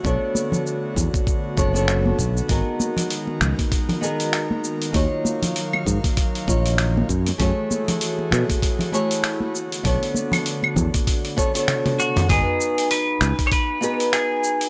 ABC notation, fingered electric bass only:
X:1
M:4/4
L:1/8
Q:"Swing 16ths" 1/4=98
K:G#m
V:1 name="Fingered electric bass" clef=bass
B,,, z2 E,, z F,,,2 B,,, | G,,, z2 C,, z4 | D,, z2 G,, z A,,,2 F,, | F,, z2 B,, z4 |
B,,, z2 E,, z4 | G,,, z2 C,, z4 |]